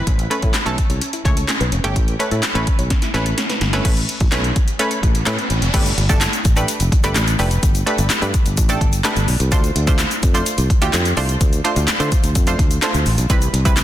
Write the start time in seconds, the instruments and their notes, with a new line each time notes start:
0.07 fretless electric bass A1, synth arpeggio sound C#4, kick, closed hi-hat
0.19 closed hi-hat
0.30 synth pluck A3 C#4 B4, synth arpeggio sound C#4, closed hi-hat
0.42 fretless electric bass A2, synth arpeggio sound A4, kick, closed hi-hat
0.54 snare, clap, closed hi-hat
0.66 fretless electric bass B1, synth pluck A3 C#4 A4, synth arpeggio sound B4, closed hi-hat
0.78 kick, closed hi-hat
0.90 fretless electric bass C2, synth arpeggio sound C#5, closed hi-hat
1.01 synth arpeggio sound C#4, closed hi-hat
1.13 synth arpeggio sound E4, closed hi-hat
1.25 fretless electric bass C#2, synth pluck A3 C#4 C#5, synth arpeggio sound C#4, kick, closed hi-hat
1.37 synth arpeggio sound A4, closed hi-hat
1.48 synth arpeggio sound C#4, snare, clap, closed hi-hat
1.61 fretless electric bass B1, synth arpeggio sound B4, closed hi-hat
1.72 fretless electric bass F1, synth arpeggio sound C#4, closed hi-hat
1.84 fretless electric bass G1, synth pluck A3 C#4 G4, closed hi-hat
1.96 fretless electric bass A1, synth arpeggio sound C#4, kick, closed hi-hat
2.08 closed hi-hat
2.19 synth pluck A3 C#4 B4, synth arpeggio sound C#4, closed hi-hat
2.31 fretless electric bass A2, synth arpeggio sound A4, closed hi-hat
2.43 snare, clap, closed hi-hat
2.55 fretless electric bass A1, synth pluck A3 C#4 B4, synth arpeggio sound B4, closed hi-hat
2.67 kick, closed hi-hat
2.79 fretless electric bass B1, synth arpeggio sound C#5, closed hi-hat
2.90 synth arpeggio sound C#4, kick, snare, closed hi-hat
3.02 synth arpeggio sound E4, snare, closed hi-hat
3.14 fretless electric bass A1, synth pluck A3 C#4 B4, synth arpeggio sound C#4, snare, closed hi-hat
3.26 synth arpeggio sound A4, closed hi-hat
3.38 synth arpeggio sound C#4, snare, closed hi-hat
3.50 synth arpeggio sound B4, snare, closed hi-hat
3.61 fretless electric bass G1, synth arpeggio sound C#4, snare, closed hi-hat
3.73 synth pluck A3 C#4 B4, snare, closed hi-hat
3.85 fretless electric bass A1, synth pluck A3 C#4 B4, kick, closed hi-hat, crash, riser
3.97 closed hi-hat
4.09 closed hi-hat
4.20 fretless electric bass A1, kick, closed hi-hat
4.32 fretless electric bass B1, synth pluck A3 C#4 B4, snare, clap, closed hi-hat
4.44 closed hi-hat
4.56 kick, closed hi-hat
4.68 closed hi-hat
4.79 synth pluck A3 C#4 B4, closed hi-hat
4.91 closed hi-hat
5.03 fretless electric bass A1, kick, closed hi-hat
5.15 closed hi-hat
5.26 fretless electric bass A2, synth pluck A3 C#4 B4, snare, clap, closed hi-hat
5.39 closed hi-hat
5.50 fretless electric bass A1, closed hi-hat
5.62 fretless electric bass F1, closed hi-hat
5.74 fretless electric bass G1, synth pluck A3 D4 G4 B4, kick, closed hi-hat, crash, shaker
5.86 closed hi-hat, shaker
5.98 fretless electric bass G1, closed hi-hat
6.09 synth pluck A3 D4 G4 A4, kick, closed hi-hat, shaker
6.21 snare, clap, closed hi-hat, shaker
6.33 closed hi-hat, shaker
6.45 fretless electric bass A1, kick, closed hi-hat, shaker
6.56 synth pluck A3 D4 G4 B4, closed hi-hat, shaker
6.68 closed hi-hat, shaker
6.80 fretless electric bass F1, closed hi-hat, shaker
6.92 kick, closed hi-hat
7.04 fretless electric bass G1, synth pluck A3 D4 G4 B4, closed hi-hat, shaker
7.15 fretless electric bass A1, snare, clap, closed hi-hat, shaker
7.27 closed hi-hat, shaker
7.39 fretless electric bass F1, synth pluck A3 D4 G4 B4, open hi-hat, shaker
7.51 closed hi-hat, shaker
7.63 fretless electric bass G1, kick, closed hi-hat, shaker
7.75 closed hi-hat, shaker
7.86 synth pluck A3 D4 G4 B4, closed hi-hat
7.98 fretless electric bass G1, closed hi-hat, shaker
8.10 muted fretless electric bass stroke, snare, clap, closed hi-hat, shaker
8.22 fretless electric bass G2, synth pluck A3 D4 G4 B4, closed hi-hat, shaker
8.34 kick, closed hi-hat, shaker
8.46 fretless electric bass G1, closed hi-hat, shaker
8.57 fretless electric bass A1, kick, closed hi-hat, shaker
8.69 synth pluck A3 D4 G4 A4, closed hi-hat, shaker
8.81 fretless electric bass G1, kick, closed hi-hat
8.93 closed hi-hat, shaker
9.04 synth pluck A3 D4 G4 B4, snare, clap, closed hi-hat, shaker
9.16 fretless electric bass G1, closed hi-hat, shaker
9.28 fretless electric bass B1, open hi-hat, shaker
9.40 fretless electric bass C2, closed hi-hat, shaker
9.52 fretless electric bass D2, synth pluck A3 D4 F4 C5, kick, closed hi-hat, shaker
9.64 closed hi-hat, shaker
9.75 fretless electric bass D2, closed hi-hat
9.87 synth pluck A3 D4 F4 C5, kick, closed hi-hat, shaker
9.99 snare, clap, closed hi-hat, shaker
10.11 closed hi-hat, shaker
10.23 fretless electric bass F2, kick, closed hi-hat, shaker
10.34 synth pluck A3 D4 F4 C5, closed hi-hat, shaker
10.46 closed hi-hat, shaker
10.58 fretless electric bass C2, closed hi-hat, shaker
10.70 kick, closed hi-hat
10.82 fretless electric bass D2, synth pluck A3 D4 F4 G4, closed hi-hat, shaker
10.93 fretless electric bass F2, snare, clap, closed hi-hat, shaker
11.05 closed hi-hat, shaker
11.17 fretless electric bass C2, synth pluck A3 D4 F4 C5, open hi-hat, shaker
11.29 closed hi-hat, shaker
11.41 fretless electric bass D2, kick, closed hi-hat, shaker
11.53 closed hi-hat, shaker
11.64 synth pluck A3 D4 F4 C5, closed hi-hat
11.76 fretless electric bass D2, closed hi-hat, shaker
11.88 muted fretless electric bass stroke, snare, clap, closed hi-hat, shaker
12.00 fretless electric bass D3, synth pluck A3 D4 F4 C5, closed hi-hat, shaker
12.12 kick, closed hi-hat, shaker
12.23 fretless electric bass D2, closed hi-hat, shaker
12.35 fretless electric bass F2, kick, closed hi-hat, shaker
12.47 synth pluck A3 D4 F4 C5, closed hi-hat, shaker
12.59 fretless electric bass D2, kick, closed hi-hat
12.71 closed hi-hat, shaker
12.82 synth pluck A3 D4 F4 C5, snare, clap, closed hi-hat, shaker
12.94 fretless electric bass D2, closed hi-hat, shaker
13.06 fretless electric bass A1, open hi-hat, shaker
13.18 fretless electric bass B1, closed hi-hat, shaker
13.30 fretless electric bass C2, synth pluck G3 C4 E4 B4, kick, closed hi-hat, shaker
13.42 closed hi-hat, shaker
13.53 fretless electric bass C2, closed hi-hat
13.65 synth pluck G3 C4 E4 B4, kick, closed hi-hat, shaker
13.77 snare, clap, closed hi-hat, shaker